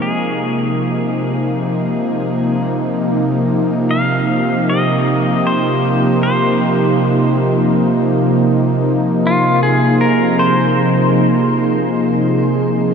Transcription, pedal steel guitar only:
0.02 G#4
3.91 F5
4.70 D#5
5.47 C5
6.23 C5
9.27 F4
9.63 G#4
10.01 A#4
10.39 C5

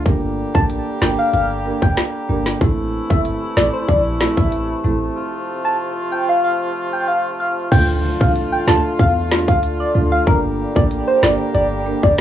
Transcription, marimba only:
0.05 A#3 D4 G4 A#4
0.54 A#3 D4 G4 A#4
1.01 A#3 D4 G4 A#4
1.65 A#3 D4 G4 A#4
2.29 A#3 D4 G4 A#4
2.61 A3 C4 E4 A4
3.10 A3 C4 E4 A4
3.57 A3 C4 E4 A4
4.20 A3 C4 E4 A4
4.84 A3 C4 E4 A4
7.71 A3 D4 F4 A4
8.20 A3 D4 F4 A4
8.67 A3 D4 F4 A4
9.31 A3 D4 F4 A4
9.95 A3 D4 F4 A4
10.27 A#3 D4 G4 A#4
10.75 A#3 D4 G4 A#4
11.22 A#3 D4 G4 A#4
11.86 A#3 D4 G4 A#4

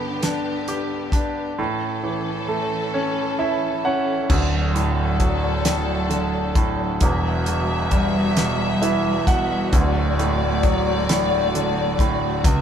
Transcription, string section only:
Already playing: D3 B3 G4
1.58 E3 C#4 A4
4.29 F#3 D4 A4
7.01 G3 F#4 E5
9.73 A3 D5
12.45 C#3 A3 E5

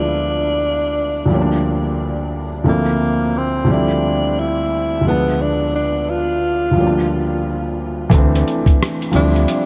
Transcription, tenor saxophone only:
Already playing: D4
2.69 A#3
3.37 C4
3.71 D4
4.39 E4
5.08 B3
5.41 D4
5.75 D4
6.10 F4
9.15 D4
9.50 D4

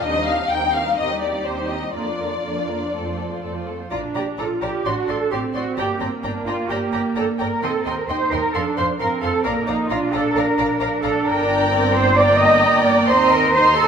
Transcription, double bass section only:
0.04 D#2
0.51 D#2
0.98 D#2
1.45 D#2
1.95 F2
2.44 F2
2.94 F2
3.43 F2
3.91 A#1
4.15 A#1
4.38 A#1
4.62 A#1
4.85 A1
5.08 A1
5.32 A1
5.54 A1
5.77 G1
6.00 G1
6.23 G1
6.46 G1
6.70 G1
6.93 G1
7.16 G1
7.40 G1
7.62 D#2
7.85 D#2
8.08 D#2
8.32 D#2
8.54 F2
8.77 F2
9.00 F2
9.23 F2
9.46 A#1
9.68 A#1
9.90 A#1
10.13 A#1
10.35 A#1
10.58 A#1
10.80 A#1
11.03 A#1
11.25 G1
13.09 D#2

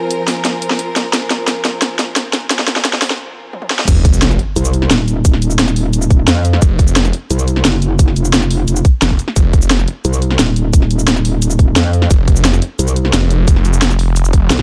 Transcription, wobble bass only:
4.56 C2
4.90 D#1
6.28 F2
7.30 C2
7.65 F#1
8.16 F1
8.68 F1
10.05 C2
10.39 D#1
11.76 F2
12.79 C2
14.50 C2

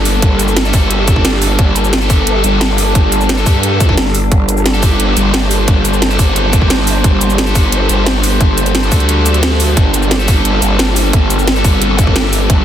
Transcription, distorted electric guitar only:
Already playing: A#3 D4 G4 A4
0.65 A#3 D4 G4 A4
2.01 A#3 D4 G4 A4
3.37 A#3 D4 G4 A4
3.89 A#3 D4 G4 A4
4.74 A#3 D4 G4 A4
6.10 A#3 D4 G4 A4
7.46 A#3 D4 G4 A4
8.83 A#3 D4 G4 A4
10.19 A#3 D4 G4 A4
11.56 A#3 D4 G4 A4

